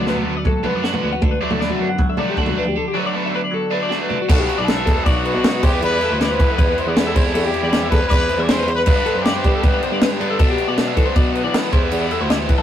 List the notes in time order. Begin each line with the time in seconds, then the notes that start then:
Already playing: D2 D3 F#3 B3 F#4
0.06 D3 F#3 A3 B3 D4 B4, snare
0.16 D5, floor tom
0.26 D2 B3 B4
0.37 D5
0.45 F#3 A4, kick, floor tom
0.54 A1
0.64 D3 F#3 B3 D4 B4, floor tom, mid tom
0.74 F#2 D5
0.84 D3 F#3 B3 D4 F#4, snare
0.94 B4, floor tom, mid tom
1.02 D2 B3
1.13 F#4, mid tom
1.22 D2 D3 A4, kick, floor tom
1.31 B4
1.41 D3 F#3 A3 D4 D5
1.51 D2 A4, floor tom, mid tom
1.59 D3 F#3 A3 B3 D4 D5, snare
1.70 F#4, floor tom
1.80 F#2 D4
1.89 F#5
1.98 F#3, kick, floor tom
2.09 D3 E5
2.17 D3 F#3 A3 D4 D5, floor tom, mid tom
2.29 G4
2.37 D2 D3 F#3 A3 D4 F#4 A4, kick
2.46 F#4, floor tom, mid tom
2.58 D4 B4
2.65 D2 G4, mid tom
2.76 D3 A4
2.88 G4
2.94 D3 F#3 A3 D4 B4
3.06 D5
3.14 D3 F#3 A3 B3 D4 B4
3.26 E5
3.34 D4 B4
3.44 D5
3.51 F#3 A4
3.70 D3 F#3 A3 D4 B4
3.82 D5
3.89 D3 F#3 A3 D4 F#4, snare
4.02 B4
4.09 D4, floor tom
4.22 F#4
4.27 B1 B2 F#3 B3 F#4 A4, kick, crash
4.31 D4
4.39 G4
4.49 crash
4.58 B1 D5
4.64 A4, crash
4.68 snare
4.77 E5
4.86 E2 A4, kick, crash
4.97 C5
5.05 B1 F#4 D5, kick, crash
5.25 B4, crash
5.34 B2 D5
5.44 snare, crash
5.54 B4
5.62 E2 E3 G3 B3 E4 G4 C5, kick, crash
5.74 B4
5.81 E2 B4, crash
5.93 D5
6.01 A4, crash
6.10 D2 C5
6.21 B4 D5, snare, crash
6.32 C5
6.39 E3 B4, kick, crash
6.50 A4
6.58 E2 B4, kick, crash
6.68 B4
6.78 C5, crash
6.86 E2 D5
6.96 E3 G3 B3 E4 B4, snare, crash
7.07 A4
7.15 E2 E3 G3 C4 E4 C5, kick, crash
7.25 A4
7.34 E2 G4 A4, crash
7.45 G4
7.54 crash
7.62 E2 D5
7.73 snare, crash
7.83 E5
7.90 E2 A4 B4, kick, crash
8.01 C5
8.08 E2 B4 D5, kick, crash
8.29 C5, crash
8.38 E2 E5
8.43 D5
8.49 E3 G3 C4 E4 C5, snare, crash
8.59 B4
8.67 E2 C5, crash
8.75 B4
8.85 G2 D3 G3 B3 B4, kick, crash
8.89 D4
8.96 D5
9.06 A4, crash
9.14 F#2 C5
9.23 G4 D5, snare, crash
9.36 C5
9.44 G3 B4, kick, crash
9.55 A4
9.63 G2 B4, kick, crash
9.74 B4
9.83 C5, crash
9.92 G2 D5
10.01 B4, snare, crash
10.11 G4
10.20 G2 D3 G3 B3 D4 B4, crash
10.30 A4
10.39 B2 F#3 B3 D4 A4, kick, crash
10.50 G4
10.58 crash
10.68 B2 D5
10.78 snare, crash
10.88 E5
10.97 E3 A4, kick, crash
11.06 C5
11.16 B2 D5, kick, crash
11.35 B4, crash
11.44 E3 D5
11.54 snare, crash
11.63 B4
11.72 E2 E3 G3 B3 E4 C5, kick, crash
11.83 B4
11.91 E2, crash
12.02 D5
12.11 A4, crash
12.20 D2 C5
12.30 D5, snare, crash
12.39 C5
12.49 E3 B4, kick, crash
12.58 A4